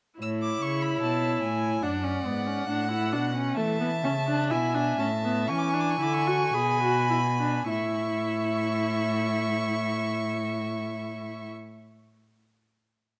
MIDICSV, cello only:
0, 0, Header, 1, 2, 480
1, 0, Start_track
1, 0, Key_signature, 3, "major"
1, 0, Tempo, 826446
1, 117, Time_signature, 4, 2, 24, 8
1, 1560, Tempo, 906344
1, 2520, Tempo, 985222
1, 3000, Tempo, 1060071
1, 3480, Tempo, 1145038
1, 3960, Tempo, 1190476
1, 6180, End_track
2, 0, Start_track
2, 0, Title_t, "Cello"
2, 0, Program_c, 0, 42
2, 116, Note_on_c, 0, 45, 54
2, 334, Note_off_c, 0, 45, 0
2, 355, Note_on_c, 0, 49, 56
2, 584, Note_off_c, 0, 49, 0
2, 587, Note_on_c, 0, 47, 56
2, 821, Note_off_c, 0, 47, 0
2, 827, Note_on_c, 0, 45, 53
2, 1063, Note_off_c, 0, 45, 0
2, 1067, Note_on_c, 0, 42, 55
2, 1306, Note_off_c, 0, 42, 0
2, 1310, Note_on_c, 0, 44, 52
2, 1554, Note_off_c, 0, 44, 0
2, 1558, Note_on_c, 0, 45, 55
2, 1795, Note_on_c, 0, 47, 60
2, 1803, Note_off_c, 0, 45, 0
2, 2028, Note_off_c, 0, 47, 0
2, 2031, Note_on_c, 0, 52, 59
2, 2273, Note_on_c, 0, 49, 62
2, 2281, Note_off_c, 0, 52, 0
2, 2523, Note_on_c, 0, 47, 57
2, 2530, Note_off_c, 0, 49, 0
2, 2753, Note_off_c, 0, 47, 0
2, 2756, Note_on_c, 0, 45, 61
2, 3003, Note_on_c, 0, 52, 63
2, 3010, Note_off_c, 0, 45, 0
2, 3238, Note_off_c, 0, 52, 0
2, 3240, Note_on_c, 0, 50, 60
2, 3478, Note_off_c, 0, 50, 0
2, 3484, Note_on_c, 0, 47, 67
2, 3954, Note_off_c, 0, 47, 0
2, 3964, Note_on_c, 0, 45, 56
2, 5501, Note_off_c, 0, 45, 0
2, 6180, End_track
0, 0, End_of_file